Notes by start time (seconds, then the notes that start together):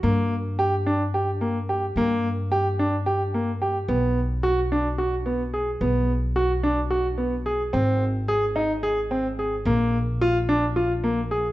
0.03 G2 A#3
0.59 G4
0.86 D4
1.14 G4
1.41 A#3
1.69 G4
1.96 G2 A#3
2.52 G4
2.79 D4
3.06 G4
3.34 A#3
3.62 G4
3.88 B1 B3
4.43 F#4
4.72 D4
4.98 F#4
5.26 B3
5.54 G#4
5.81 B1 B3
6.36 F#4
6.63 D4
6.91 F#4
7.18 B3
7.46 G#4
7.73 G#1 C4
8.28 G#4
8.56 D#4
8.83 G#4
9.11 C4
9.39 G#4
9.65 A#1 A#3
10.21 F4
10.49 D4
10.76 F4
11.04 A#3
11.31 G#4